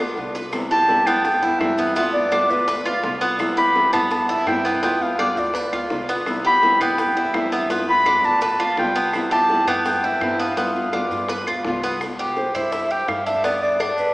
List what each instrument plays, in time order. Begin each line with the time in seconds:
Already playing: upright bass D2, clarinet D5
0.00 nylon-string guitar B3 F4, cuban tres D4
0.16 upright bass C2, nylon-string guitar G3 B3 F4, maracas
0.35 cuban tres B4, low bongo, maracas
0.52 nylon-string guitar C3 E3 G3 B3 E4, high bongo, claves, maracas
0.71 nylon-string guitar G3 B3 E4, cuban tres G4, clarinet A5, maracas
0.88 nylon-string guitar C3 E3 G3 B3 E4, high bongo, maracas
1.06 upright bass G2, nylon-string guitar G3 B3 E4, cuban tres B3, clarinet G5, claves, maracas
1.24 clarinet G5, muted nylon-string guitar stroke, high bongo, maracas
1.42 nylon-string guitar G3 B3 E4, cuban tres E4, maracas
1.59 upright bass G2, nylon-string guitar C3 E3 G3 B3 E4, clarinet E5, high bongo, low bongo, claves, maracas
1.78 cuban tres B3, maracas
1.95 nylon-string guitar G3 B3 F4, cuban tres B3, clarinet E5, high bongo, maracas
2.13 nylon-string guitar B3 F4, clarinet D5, high bongo, maracas
2.31 nylon-string guitar G3 B3 F4, cuban tres D4, high bongo, claves, maracas
2.50 upright bass D2, nylon-string guitar B3 F4, clarinet B4, high bongo, maracas
2.67 cuban tres B4, muted nylon-string guitar stroke, high bongo, maracas
2.85 nylon-string guitar B3 F4, cuban tres F4, high bongo, claves, maracas
3.03 upright bass C2, nylon-string guitar G3 B3 F4, high bongo, low bongo, maracas
3.21 cuban tres B3, maracas
3.39 nylon-string guitar C3 E3 G3 B3 E4, high bongo, claves, maracas
3.57 nylon-string guitar G3 B3 E4, cuban tres G4, clarinet B5, maracas
3.75 nylon-string guitar C3 E3 G3 B3 E4, high bongo, maracas
3.93 upright bass G2, nylon-string guitar G3 B3 E4, cuban tres B3, clarinet A5, claves, maracas
4.11 clarinet A5, muted nylon-string guitar stroke, high bongo, maracas
4.29 nylon-string guitar G3 B3 E4, cuban tres E4, maracas
4.46 upright bass G2, nylon-string guitar C3 E3 G3 B3 E4, clarinet G5, high bongo, low bongo, claves, maracas
4.65 cuban tres B3, maracas
4.82 nylon-string guitar G3 B3 F4, cuban tres B3, clarinet G5, high bongo, maracas
5.01 nylon-string guitar B3 F4, clarinet F5, high bongo, maracas
5.19 nylon-string guitar G3 B3 F4, cuban tres D4, high bongo, claves, maracas
5.36 upright bass D2, nylon-string guitar B3 F4, clarinet D5, high bongo, maracas
5.54 cuban tres B4, muted nylon-string guitar stroke, high bongo, maracas
5.72 upright bass D2, nylon-string guitar B3 F4, cuban tres F4, high bongo, claves, maracas
5.90 upright bass C2, nylon-string guitar G3 B3 F4, high bongo, low bongo, maracas
6.09 cuban tres B3, maracas
6.26 nylon-string guitar C3 E3 G3 B3 E4, high bongo, claves, maracas
6.45 nylon-string guitar G3 B3 E4, cuban tres G4, clarinet B5, maracas
6.62 nylon-string guitar C3 E3 G3 B3 E4, high bongo, maracas
6.80 upright bass G2, nylon-string guitar G3 B3 E4, cuban tres B3, clarinet G5, claves, maracas
6.98 clarinet G5, muted nylon-string guitar stroke, high bongo, maracas
7.15 nylon-string guitar G3 B3 E4, cuban tres E4, maracas
7.34 upright bass G2, nylon-string guitar C3 E3 G3 B3 E4, clarinet E5, high bongo, low bongo, claves, maracas
7.52 cuban tres B3, maracas
7.70 nylon-string guitar G3 B3 F4, cuban tres B3, high bongo, maracas
7.88 nylon-string guitar B3 F4, clarinet B5, high bongo, maracas
8.06 nylon-string guitar G3 B3 F4, cuban tres D4, high bongo, claves, maracas
8.23 upright bass D2, nylon-string guitar B3 F4, clarinet A5, high bongo, maracas
8.41 cuban tres B4, clarinet A5, muted nylon-string guitar stroke, high bongo, maracas
8.60 nylon-string guitar B3 F4, cuban tres F4, high bongo, claves, maracas
8.77 upright bass C2, nylon-string guitar G3 B3 F4, clarinet G5, high bongo, low bongo, maracas
8.95 cuban tres B3, maracas
9.13 nylon-string guitar C3 E3 G3 B3 E4, high bongo, claves, maracas
9.31 nylon-string guitar G3 B3 E4, cuban tres G4, clarinet A5, maracas
9.49 nylon-string guitar C3 E3 G3 B3 E4, high bongo, maracas
9.67 upright bass G2, nylon-string guitar G3 B3 E4, cuban tres B3, clarinet G5, claves, maracas
9.85 clarinet G5, muted nylon-string guitar stroke, high bongo, maracas
10.03 nylon-string guitar G3 B3 E4, cuban tres E4, maracas
10.21 upright bass G2, nylon-string guitar C3 E3 G3 B3 E4, high bongo, low bongo, claves, maracas
10.39 cuban tres B3, clarinet F5, maracas
10.57 nylon-string guitar G3 B3 F4, cuban tres B3, high bongo, maracas
10.75 nylon-string guitar B3 F4, high bongo, maracas
10.93 nylon-string guitar G3 B3 F4, cuban tres D4, high bongo, claves, maracas
11.10 upright bass G2, nylon-string guitar B3 F4, high bongo, maracas
11.29 cuban tres B4, muted nylon-string guitar stroke, high bongo, maracas
11.47 upright bass D2, nylon-string guitar B3 F4, cuban tres F4, high bongo, claves, maracas
11.65 upright bass C2, nylon-string guitar G3 B3 F4, high bongo, low bongo, maracas
11.83 cuban tres B3, maracas
12.01 high bongo, claves, maracas
12.19 cuban tres G4, maracas
12.37 clarinet C5, high bongo, maracas
12.54 upright bass G2, cuban tres E4, clarinet C5, claves, maracas
12.72 clarinet E5, high bongo, maracas
12.90 cuban tres G4, clarinet G5, maracas
13.08 upright bass G2, clarinet F5, high bongo, low bongo, claves, maracas
13.26 cuban tres D4, clarinet E5, maracas
13.44 cuban tres B3, clarinet D5, high bongo, maracas
13.62 clarinet D5, high bongo, maracas
13.80 cuban tres D4, high bongo, claves, maracas
13.98 upright bass G2, clarinet B4, high bongo, maracas